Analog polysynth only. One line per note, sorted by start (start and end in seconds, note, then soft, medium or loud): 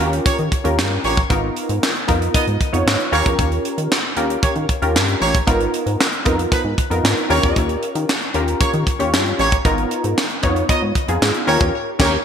0.00 0.50 C#4 medium
0.00 0.50 F4 medium
0.00 0.50 A#4 medium
0.06 0.53 G4 medium
0.64 1.15 C#4 medium
0.64 1.15 F4 medium
0.64 1.15 G4 medium
0.64 1.15 A#4 medium
1.30 1.90 B3 medium
1.30 1.90 D#4 medium
1.30 1.90 F4 medium
1.30 1.90 A#4 loud
2.08 2.58 B3 medium
2.08 2.58 D#4 medium
2.08 2.58 F4 medium
2.08 2.58 A#4 loud
2.73 3.12 B3 medium
2.73 3.12 D#4 medium
2.73 3.11 F4 medium
2.73 3.13 C#5 medium
3.12 3.96 C#4 loud
3.12 3.96 F4 medium
3.12 3.96 G4 medium
3.12 3.96 A#4 loud
4.17 4.67 C#4 medium
4.17 4.67 F4 medium
4.17 4.67 G4 medium
4.17 4.67 A#4 loud
4.82 5.32 C#4 medium
4.82 5.32 F4 medium
4.82 5.32 G4 medium
4.82 5.33 A#4 loud
5.47 6.07 B3 loud
5.47 6.07 D#4 medium
5.47 6.08 F4 medium
5.47 6.08 A#4 loud
6.25 6.76 B3 medium
6.25 6.76 D#4 medium
6.25 6.76 F4 medium
6.25 6.76 A#4 medium
6.90 7.30 B3 medium
6.90 7.30 D#4 medium
6.90 7.28 F4 medium
6.90 7.29 A#4 medium
7.29 8.13 C#4 loud
7.29 8.13 F4 medium
7.29 8.14 G4 medium
7.29 8.14 A#4 loud
8.34 8.84 C#4 medium
8.34 8.85 F4 medium
8.34 8.85 G4 medium
8.34 8.85 A#4 medium
8.99 9.50 C#4 medium
8.99 9.50 F4 medium
8.99 9.50 G4 medium
8.99 9.50 C#5 medium
9.65 10.25 B3 medium
9.65 10.25 D#4 medium
9.65 10.25 F4 medium
9.65 10.25 A#4 loud
10.43 10.93 B3 medium
10.43 10.93 D#4 medium
10.43 10.93 F4 medium
10.43 10.94 C#5 medium
11.08 11.47 B3 medium
11.08 11.48 D#4 medium
11.08 11.46 F4 medium
11.08 11.48 G#4 medium
11.47 11.73 C#4 loud
11.47 11.73 F4 medium
11.47 11.74 G4 medium
11.47 11.74 A#4 loud
11.99 12.17 C#4 loud
11.99 12.17 G4 loud
11.99 12.17 A#4 loud